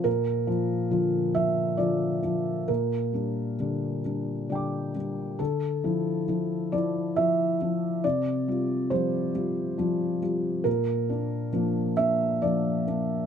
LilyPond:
<<
  \new Staff \with { instrumentName = "Felt piano" } { \time 3/4 \key bes \lydian \tempo 4 = 68 << { r2. | r2 <d'' g'' d'''>4 | r2. | r2. |
r2. | } \\ { bes'4. e''8 d''4 | bes'2~ bes'8 r8 | a'4. d''8 e''4 | d''4 c''4. r8 |
bes'4. e''8 d''4 | } >> }
  \new Staff \with { instrumentName = "Felt piano" } { \clef bass \time 3/4 \key bes \lydian bes,8 <f f'>8 <d f f'>8 <f f'>8 <d f f'>8 <f f'>8 | bes,8 <g d'>8 <d g d'>8 <g d'>8 <d g d'>8 <g d'>8 | d8 <f e'>8 <f e'>8 <f e'>8 <f e'>8 <f e'>8 | c8 <g f'>8 <f g f'>8 <g f'>8 <f g f'>8 <g f'>8 |
bes,8 <bes d'>8 <f bes d'>8 <bes d'>8 <f bes d'>8 <bes d'>8 | }
>>